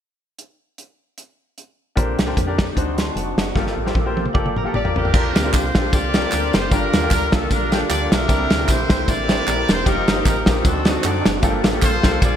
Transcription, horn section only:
4.74 D5
4.97 D4 G4 A#4
5.54 F4 G4 C5
5.93 F4 G4 D5
6.54 C5
6.71 D4 F4 A#4
7.11 A#4
7.32 A4
7.51 D4 F4 A#4
7.72 G4
7.90 D5
8.12 D4 E4 A#4
8.70 E4 G4 C5
9.09 G4 A#4 D5
9.72 C5
9.86 D#4 G4 A#4
10.28 A#4
10.49 G4
10.65 C4 F#4 A4
10.89 F#4
11.06 D5
11.84 F4 A4 C5
12.23 F4 G#4 D5

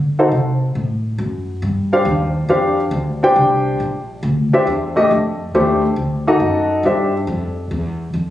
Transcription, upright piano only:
0.19 D#4 F#4 A4 C5
1.93 D4 G4 C5 F5
2.49 D4 G4 C5 F5
3.23 D4 G4 C5 G5
4.53 D4 G4 C5 E5
4.96 A3 D4 G4 D#5
5.55 A3 D4 G4 C5
6.27 D#4 F#4 A4 D#5
6.85 D4 G4 C5 E5

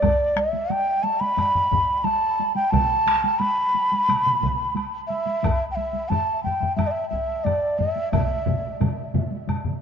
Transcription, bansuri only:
Already playing: D5
0.38 E5
0.72 G5
1.03 A5
1.20 B5
2.04 A5
2.56 G5
2.71 A5
3.39 B5
5.07 E5
5.71 G5
5.75 E5
6.09 A5
6.44 G5
6.76 E5
6.87 D5
6.91 E5
7.09 E5
7.44 D5
7.78 E5
8.12 E5

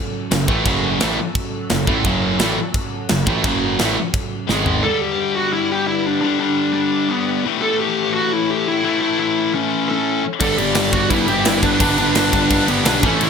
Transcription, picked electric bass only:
0.32 F#1
0.49 A1
0.66 F#1
1.03 A1
1.71 F#1
1.88 A1
2.05 F#1
2.41 A1
3.10 F#1
3.27 A1
3.44 F#1
3.81 A1
4.49 G#1
10.41 G1
10.59 G1
10.76 G1
10.93 G1
11.11 G1
11.29 G1
11.46 G1
11.81 G1
11.99 G1
12.16 G1
12.33 G1
12.51 G1
12.68 G1
12.85 B1
13.03 A1
13.22 A1

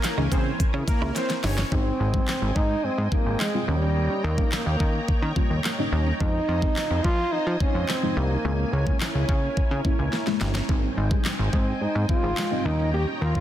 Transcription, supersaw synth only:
Already playing: A#3 A#4
0.32 C4 C5
0.88 A#3 A#4
1.16 C4 C5
1.44 C#4 C#5

